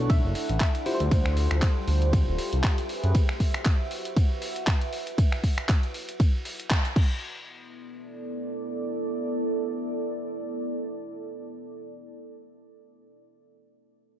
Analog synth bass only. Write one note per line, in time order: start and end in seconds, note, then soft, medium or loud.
0.00 0.20 B1 medium
0.24 0.33 F#1 loud
0.49 0.59 A1 medium
1.00 1.10 D2 loud
1.11 1.48 D2 loud
1.51 1.61 D2 loud
1.88 2.24 D2 medium
2.27 2.37 D1 loud
2.53 2.62 C2 medium
3.04 3.13 F#2 loud